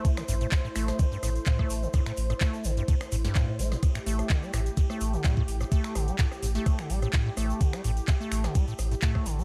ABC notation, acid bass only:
X:1
M:4/4
L:1/16
Q:"Swing 16ths" 1/4=127
K:Am
V:1 name="Acid bass" clef=bass
A, D, G,, A,, z A,, A,2 D, G,, A,, z A,, A,2 D, | G,, A,, z A,, A,2 D, G,, A,, z A,, G,,2 A,, A, A,, | z A,, A,2 D, G, A,, z A,, A,2 D, G, A,, z A,, | A,2 D, G, A,, z A,, A,2 D, G, A,, z A,, A,2 |
D, G, A,, z A,, A,2 D, G, A,, z A,, A,2 D, G, |]